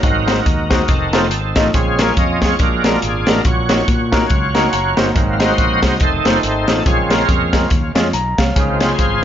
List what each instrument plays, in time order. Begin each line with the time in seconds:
0.03 fingered electric bass G#1, grand piano G#2, tonewheel organ F#3 A#3 C4 D#4 F#4 A#4, kick, closed hi-hat
0.27 grand piano G#3 D#4 F#4 C5, snare, closed hi-hat
0.46 fingered electric bass D#2, kick, closed hi-hat
0.70 grand piano G#3 D#4 F#4 C5, kick, snare, closed hi-hat
0.88 fingered electric bass F1, tonewheel organ D#3 C4 A4, kick, closed hi-hat
1.13 grand piano A3 D#4 F4 C5, snare, closed hi-hat
1.31 fingered electric bass G#1, closed hi-hat
1.56 fingered electric bass A1, grand piano A3 D#4 F4 D#5, kick, snare, closed hi-hat
1.74 fingered electric bass A#1, grand piano A#2, tonewheel organ C#3 G#3 C4 C#4 F4 G#4, kick, closed hi-hat
1.99 grand piano G#3 C#4 F4 A#4, tonewheel organ G#4, snare, closed hi-hat
2.17 fingered electric bass F2, tonewheel organ D#5, kick, closed hi-hat
2.42 grand piano G#3 C#4 F4 G#4, tonewheel organ C#5, kick, snare, closed hi-hat
2.59 fingered electric bass A#1, grand piano A#2, tonewheel organ F#3 G#3 D4 F4 A#4, kick, closed hi-hat
2.84 grand piano G#3 D4 F#4 A#4, tonewheel organ A#4, snare, closed hi-hat
3.02 fingered electric bass G#1, tonewheel organ G#4, closed hi-hat
3.27 fingered electric bass A1, grand piano G#3 D4 F#4 A#4, tonewheel organ A#4, snare, closed hi-hat
3.45 fingered electric bass A#1, grand piano A#2, tonewheel organ F#4 C#5, kick, closed hi-hat
3.69 grand piano A#3 D#4 F#4 C#5, snare, closed hi-hat
3.88 fingered electric bass A#2, kick, closed hi-hat
4.12 tonewheel organ F#3 C#4 F4, grand piano A#3 D#4 F#4 A#4, kick, snare, closed hi-hat
4.30 fingered electric bass C#2, kick, closed hi-hat
4.54 grand piano A#3 D#4 F#4 A#4, snare, closed hi-hat
4.73 fingered electric bass F#1, grand piano A#5, closed hi-hat
4.97 fingered electric bass G1, grand piano A#3 D#4 F#4 C5, snare, closed hi-hat
5.14 fingered electric bass G#1, grand piano G#2, tonewheel organ F#3 A#3 C4, kick, closed hi-hat
5.33 tonewheel organ F5
5.40 grand piano G#3 D#4 F#4 C5, tonewheel organ F#4 C5 D#5, snare, closed hi-hat
5.58 fingered electric bass A#1, kick, closed hi-hat
5.82 fingered electric bass C2, grand piano G#3 D#4 F#4 C5, kick, snare, closed hi-hat
6.00 fingered electric bass F1, tonewheel organ D#3 A3 C4 D#4 A4 C5, kick, closed hi-hat
6.25 fingered electric bass F#1, grand piano A3 D#4 F4 C5, tonewheel organ D#4 A4 C5, snare, closed hi-hat
6.43 fingered electric bass G#1, closed hi-hat
6.68 fingered electric bass A1, grand piano A3 D#4 F4 C5, tonewheel organ A4, snare, closed hi-hat
6.86 fingered electric bass A#1, grand piano A#2, tonewheel organ C#3 G#3 C4 C#4 F4 G#4, kick, closed hi-hat
7.10 grand piano G#3 C#4 F4 A#4, tonewheel organ C#4 F4 A#4, snare, closed hi-hat
7.29 fingered electric bass F2, kick, closed hi-hat
7.53 tonewheel organ C#3 G#3 C4, grand piano G#3 C#4 F4 A#4, kick, snare, closed hi-hat
7.70 fingered electric bass D#2, kick, closed hi-hat
7.95 fingered electric bass F2, grand piano G#3 C#4 F4 C#5, snare, closed hi-hat
8.13 fingered electric bass B1, grand piano A#5, closed hi-hat
8.38 fingered electric bass C2, grand piano C#5 F5, kick, snare, closed hi-hat
8.55 fingered electric bass C#2, grand piano C#3, tonewheel organ D#3 F3 C4, string section G#3 C4 C#4 F4, kick, closed hi-hat
8.80 grand piano G#3 C#4 F4 C5, tonewheel organ F4 G#4 C5, snare, closed hi-hat
8.99 fingered electric bass G#1, kick, closed hi-hat